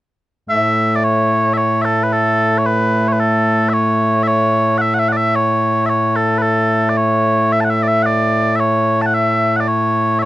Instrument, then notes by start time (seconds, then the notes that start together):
bagpipes
0.49 A2 A3 E5
0.96 D5
1.04 C#5
1.53 C#5 E5
1.82 A4 E5
2.03 B4
2.13 A4
2.58 C#5
2.66 B4
3.08 C#5
3.12 B4
3.20 A4
3.69 E5
3.73 C#5
4.23 E5
4.27 C#5
4.78 E5 F#5
4.94 F#5
4.99 E5
5.09 D5 F#5
5.17 E5
5.35 C#5
5.86 C#5 E5
6.16 A4
6.38 A4 B4
6.89 D5
6.97 C#5
7.52 E5
7.61 F#5 A5
7.70 E5
7.83 D5
7.88 E5
8.03 D5 F#5
8.56 C#5 E5
9.02 A5
9.06 F#5
9.14 E5
9.56 F#5
9.60 D5
9.68 C#5
10.19 C#5 E5